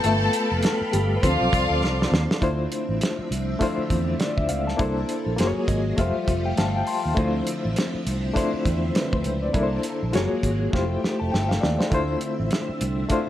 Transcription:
Already playing: A3 B3 F4 A4 B4 F5 G5 A5 B5
0.04 G1 A3 A4, closed hi-hat
0.33 closed hi-hat
0.52 F1
0.63 snare, closed hi-hat
0.81 muted fingered electric bass stroke
0.93 G1 G3 G4, closed hi-hat
1.17 B4
1.22 D2 F3 C4 F4 C5 D5 F5 C6, kick, closed hi-hat
1.41 B1
1.53 C2, kick, closed hi-hat
1.70 D2
1.82 C2, snare
2.02 snare
2.12 D#2, snare
2.31 snare
2.40 D2 D3 F3 A3 C4 D4 E4 F4 C5 E5, kick, closed hi-hat
2.72 closed hi-hat
2.89 A1
3.01 snare, closed hi-hat
3.19 muted fingered electric bass stroke
3.31 C2, closed hi-hat
3.59 A3 D4 E4 F4, kick, closed hi-hat
3.63 C5
3.78 muted fingered electric bass stroke
3.90 E2, kick, closed hi-hat
4.20 D5, snare, closed hi-hat
4.37 D2 E5, kick
4.49 C#2 F5, closed hi-hat
4.67 A5, snare
4.77 C2 A#3 D4 E4 A4, kick, closed hi-hat
4.81 C5
5.09 closed hi-hat
5.26 A#1
5.37 F#1 F#3 G#3 A#3 F4 F#4 G#4, closed hi-hat
5.41 C5, snare
5.47 C#5
5.56 muted fingered electric bass stroke
5.68 G#1 D#5, kick, closed hi-hat
5.97 F1 F3 G3 A3 F4 G4 E5 F5, kick, closed hi-hat
6.01 C5
6.15 muted fingered electric bass stroke
6.28 F1, kick, closed hi-hat
6.45 G5
6.57 G1 F5 A5, snare, closed hi-hat
6.76 G5
6.87 A5 C6, open hi-hat
7.04 D#2 F5
7.15 D2 D3 F3 A3 C4 D4 E4 F4 C5 E5, kick, closed hi-hat
7.47 closed hi-hat
7.65 A1
7.76 snare, closed hi-hat
7.94 muted fingered electric bass stroke
8.07 C2, closed hi-hat
8.33 A3 D4 E4 F4 C5, kick, closed hi-hat
8.54 muted fingered electric bass stroke
8.65 E2, kick, closed hi-hat
8.95 B4, snare, closed hi-hat
9.13 D2 C5, kick
9.24 C#2, closed hi-hat
9.42 D5
9.53 C2 D3 A#3 D4 E4 A4 A#4, kick, closed hi-hat
9.63 C5
9.83 closed hi-hat
10.03 A#1
10.12 F#1 F#3 G#3 A#3 F4 F#4 G#4 C#5, snare, closed hi-hat
10.18 A#3
10.33 muted fingered electric bass stroke
10.43 G#1, kick, closed hi-hat
10.71 F1 A3 E4 F4 G4 E5, kick, snare
10.75 C5
11.04 muted fingered electric bass stroke, snare
11.20 F1 A5
11.32 G1 G5, snare
11.49 F5, snare
11.61 D#2 D5, snare
11.79 C5, snare
11.90 D2 D3 A3 C4 D4 E4 F4, kick, closed hi-hat
11.94 C5
12.21 closed hi-hat
12.40 A1
12.51 snare, closed hi-hat
12.69 muted fingered electric bass stroke
12.81 C2, closed hi-hat
13.09 A3 D4 E4 F4 C5, kick, closed hi-hat

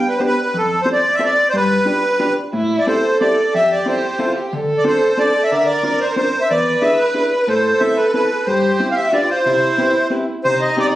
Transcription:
0.08 B4
0.18 B3 D4 G4 B4 C5
0.26 B4
0.43 B4
0.54 F2 A4
0.82 C4 C5
0.86 F4 A4 C5
0.92 D5
1.14 E5
1.19 C4 F4 A4 C5
1.24 D5
1.49 C5
1.53 G2 B4
1.85 D4 F4 G4 B4
2.20 D4 F4 G4 B4
2.53 A2 E4
2.79 D5
2.87 C4 E4 G4 A4 C5
3.20 C4 E4 G4 A4 D5
3.54 F2 G4 E5
3.71 D5
3.86 C4 E4 F4 A4 C5
4.19 C4 E4 F4 A4
4.36 G4
4.53 D3 A4
4.77 D5
4.84 C4 D4 F4 A4 C5
5.17 C4 D4 F4 A4 D5
5.43 E5
5.51 D3 A#4 D5
5.56 E5
5.65 D5
5.83 C4 D4 F4 A#4 D5
6.00 C5
6.16 C4 D4 F4 A#4 C5
6.41 E5
6.50 E2 B4 D5
6.81 D4 E4 G#4 B4 E5
6.98 B4
7.14 D4 E4 G#4 B4
7.32 B4
7.47 A2 A4 C5
7.80 C4 E4 A4 B4 E5
7.97 B4
8.13 C4 E4 A4 B4
8.46 G2 G4 C5
8.80 C4 E4 G4 C5
8.91 F5
8.96 E5
9.13 D4 F4 G4 B4 D5
9.30 C5
9.46 C3 E4
9.78 C4 E4 G4 B4
10.10 C4 E4 G4 B4
10.44 C3 D#4 C5
10.61 D#5
10.77 C4 D#4 G4 C5 D5

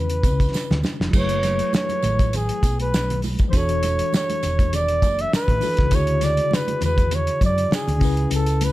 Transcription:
Already playing: E2 C#3 C#4 E4 B4
0.10 closed hi-hat
0.24 C#2, kick, closed hi-hat, tambourine, muted conga, high conga
0.40 kick, closed hi-hat, tambourine
0.54 muted fingered electric bass stroke, snare, tambourine
0.71 D2, snare, low conga
0.83 snare, tambourine, muted conga, high conga
1.00 F1, snare
1.09 F#3 E4
1.13 F#1 A3 G#4 B4, kick, tambourine, crash
1.18 C#5
1.29 closed hi-hat
1.43 snare, closed hi-hat, tambourine, muted conga, high conga
1.59 closed hi-hat
1.73 C#5, snare, tambourine, muted conga, high conga
1.89 closed hi-hat, high conga
2.02 A1, closed hi-hat, tambourine, muted conga, low conga
2.19 kick, closed hi-hat, tambourine, high conga
2.33 G#4, closed hi-hat, tambourine, muted conga, low conga
2.49 closed hi-hat
2.63 B1, kick, closed hi-hat, tambourine, high conga
2.80 B4, closed hi-hat
2.94 snare, tambourine
3.10 closed hi-hat, low conga
3.22 open hi-hat, tambourine, muted conga, high conga
3.39 kick, closed hi-hat, tambourine
3.49 E3 D4 C5, kick, closed hi-hat
3.53 E1 F#4 A4 C#5, tambourine, muted conga
3.69 closed hi-hat
3.83 closed hi-hat, tambourine, muted conga, high conga
3.99 closed hi-hat
4.13 C#5, snare, tambourine, high conga
4.30 closed hi-hat, high conga
4.43 E1, closed hi-hat, tambourine, muted conga, low conga
4.59 kick, closed hi-hat, tambourine, high conga
4.73 D5, closed hi-hat, tambourine, muted conga, low conga
4.88 closed hi-hat
5.02 F#1, kick, closed hi-hat, tambourine, muted conga, high conga
5.19 E5, closed hi-hat
5.33 B4, muted fingered electric bass stroke, snare, tambourine, muted conga
5.48 A1, kick, closed hi-hat, low conga
5.60 E3 D4 F#4 A4, open hi-hat, tambourine, muted conga, high conga
5.77 C#2, kick, snare, closed hi-hat
5.88 D2 C#3 D3 E4, kick, closed hi-hat
5.93 F#4 G#4 C#5, tambourine
6.07 closed hi-hat
6.21 D5, snare, closed hi-hat, tambourine, high conga
6.37 closed hi-hat
6.51 B4, snare, tambourine, muted conga, high conga
6.68 closed hi-hat, high conga
6.81 E2 B4, closed hi-hat, tambourine, muted conga, low conga
6.98 kick, closed hi-hat, tambourine, high conga
7.11 C#5, closed hi-hat, tambourine, muted conga, low conga
7.27 closed hi-hat
7.41 F#2 D5, kick, closed hi-hat, tambourine, high conga
7.58 closed hi-hat
7.71 G#4, snare, tambourine, muted conga
7.88 D2, closed hi-hat, low conga
7.97 C#3 C#4, open hi-hat
8.01 C#2 E4 B4, kick, tambourine, muted conga, high conga
8.17 closed hi-hat
8.30 C#2 A4, closed hi-hat, tambourine, muted conga
8.46 closed hi-hat, tambourine
8.61 B4, closed hi-hat, tambourine, muted conga, high conga

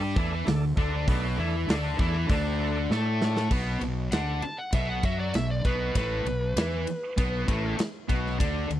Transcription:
Already playing: G2 G3 G4
0.16 E2 E3 A3 D4 E4 A4 D5, kick
0.45 D2 D3 A3 D4 A4 D5, snare, open hi-hat
0.76 D2 D3 A3 D4 A4 D5, kick
1.07 B1 B2 A3 B3 D4 A4 D5, kick, open hi-hat
1.36 E2 E3 A3 D4 E4 A4 D5
1.67 D2 D3 A3 D4 A4 D5, snare, open hi-hat
1.97 E2 E3 A3 D4 E4 A4 D5 B5, kick
2.27 D2 D3 A3 D4 A4 D5 A5, kick, open hi-hat
2.31 D4
2.44 G5
2.60 A3 D4 A4 D5 F#5
2.90 A2 A3 D4 A4 D5 E5, snare
3.05 D5
3.21 A3 D4 A4 D5 F#5, snare
3.37 snare
3.51 B1 B2 B3, kick, crash
3.81 B1 B2, ride
4.12 D2 D3 D4 F#5, snare, ride
4.42 A5, muted distorted electric guitar stroke, muted fingered electric bass stroke, ride
4.58 F#5
4.73 B1 B2 B3 E5, kick, ride
4.89 F#5
5.03 F#2 F#3 F#4 E5, kick, ride
5.20 D5
5.34 B1 B2 E5, snare, ride
5.50 D5
5.65 B1 B2 B3 B4, kick, ride
5.95 A1 A2 A3 B4, kick, ride
6.25 B1 B2, ride
6.56 E2 E3 E4, snare, ride
6.87 ride
7.17 B1 B2 B3, kick, ride
7.48 A1 A2 A3, kick, ride
7.78 muted distorted electric guitar stroke, muted fingered electric bass stroke, snare, ride
8.09 B1 B2 B3, kick, ride
8.26 snare
8.40 D2 D3 D4, kick, ride
8.70 D2 D3, ride

